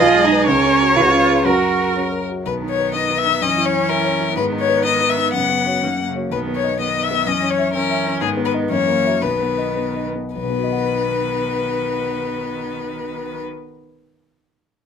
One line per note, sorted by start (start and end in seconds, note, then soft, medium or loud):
0.00 0.46 B1 medium
0.00 0.26 F4 medium
0.00 0.47 G#4 medium
0.00 0.46 D#5 medium
0.16 0.41 G#3 soft
0.24 0.49 D#4 medium
0.32 0.46 D#4 soft
0.32 0.46 B4 medium
0.47 0.95 C#2 medium
0.47 0.95 C#4 medium
0.47 0.97 A#4 medium
0.47 1.47 C#5 medium
0.64 0.90 C#4 soft
0.80 0.95 F#4 soft
0.80 0.95 A#4 soft
0.96 1.44 C#2 medium
0.96 1.04 F4 medium
0.96 1.46 B4 soft
1.02 1.11 F#4 soft
1.09 1.39 C#4 soft
1.09 1.44 F4 medium
1.29 1.44 G#4 soft
1.29 1.45 B4 soft
1.45 2.43 F#2 soft
1.45 1.94 F#4 medium
1.45 2.25 A#4 soft
1.45 2.21 A#4 medium
1.62 1.89 F#4 soft
1.79 2.06 A#4 soft
1.96 2.23 C#4 soft
2.12 2.39 A#4 soft
2.29 2.46 F#4 soft
2.45 3.39 B1 soft
2.45 3.38 D#3 soft
2.45 3.44 B3 soft
2.45 2.54 B4 soft
2.62 2.88 D#4 soft
2.70 2.94 C#5 soft
2.78 3.04 B4 soft
2.94 3.20 D#4 soft
2.94 3.19 D#5 soft
3.10 3.35 B4 soft
3.18 3.43 E5 medium
3.25 3.42 D#4 soft
3.41 4.33 F#2 soft
3.41 4.37 E3 soft
3.41 4.36 C#4 soft
3.41 3.67 D#5 medium
3.57 3.83 E4 soft
3.65 3.91 C#5 medium
3.73 3.99 C#5 soft
3.89 4.14 E4 soft
3.89 4.36 A#4 medium
4.04 4.30 C#5 soft
4.20 4.36 E4 soft
4.36 5.30 G#2 soft
4.36 5.33 D#3 soft
4.36 5.84 B3 medium
4.36 4.44 B4 medium
4.52 4.78 D#4 soft
4.60 4.84 C#5 medium
4.68 4.94 B4 soft
4.84 5.10 D#4 soft
4.84 5.11 D#5 medium
5.01 5.27 B4 soft
5.10 5.33 E5 medium
5.17 5.33 D#4 soft
5.33 5.81 F#2 soft
5.33 5.77 C#3 soft
5.33 6.06 F#5 medium
5.49 5.76 B3 soft
5.66 5.81 F#4 soft
5.66 5.81 C#5 soft
5.81 6.30 F#2 soft
5.81 5.89 D#3 soft
5.81 6.11 A#3 soft
5.99 6.25 A#3 soft
6.06 6.30 C#3 soft
6.15 6.30 F#4 soft
6.15 6.30 C#5 soft
6.30 7.24 B1 soft
6.30 6.75 D#3 soft
6.30 6.76 B3 soft
6.30 6.40 B4 soft
6.47 6.73 B3 soft
6.56 6.79 C#5 soft
6.64 6.89 D#5 soft
6.79 7.27 D#3 soft
6.79 7.04 B3 soft
6.79 7.29 B3 soft
6.79 7.05 D#5 soft
6.95 7.20 D#5 soft
7.03 7.28 E5 medium
7.11 7.26 B3 soft
7.26 8.18 F#2 soft
7.26 7.72 E3 soft
7.26 7.73 C#4 soft
7.26 7.52 D#5 medium
7.42 7.67 C#4 soft
7.50 7.73 C#5 medium
7.58 7.83 E5 soft
7.73 8.22 E3 soft
7.73 7.99 C#4 soft
7.73 8.23 C#4 soft
7.73 8.20 A#4 medium
7.90 8.15 E5 soft
8.06 8.21 C#4 soft
8.21 8.69 G#2 soft
8.21 8.69 D#3 soft
8.21 8.71 B3 medium
8.21 8.29 G#4 medium
8.37 8.63 B3 soft
8.45 8.53 B4 medium
8.54 8.69 D#4 soft
8.54 8.69 D#5 soft
8.69 9.20 F#2 soft
8.69 9.21 E3 soft
8.69 9.23 A#3 soft
8.69 9.24 C#5 medium
8.87 9.15 A#3 soft
9.05 9.20 F#4 soft
9.05 9.21 E5 soft
9.21 10.32 B1 soft
9.21 10.09 D#3 soft
9.21 10.11 B3 soft
9.21 10.06 B4 medium
9.40 9.69 B3 soft
9.58 9.88 D#5 soft
9.77 10.08 B3 soft
9.96 10.27 D#5 soft
10.15 10.35 B3 soft
10.35 13.43 B1 soft
10.35 13.42 D#3 soft
10.35 13.43 B3 soft
10.35 13.43 B4 medium
10.43 13.50 B2 soft
10.50 13.57 B3 soft
10.57 13.64 F#4 soft
10.64 13.71 D#5 soft
10.70 13.78 F#5 soft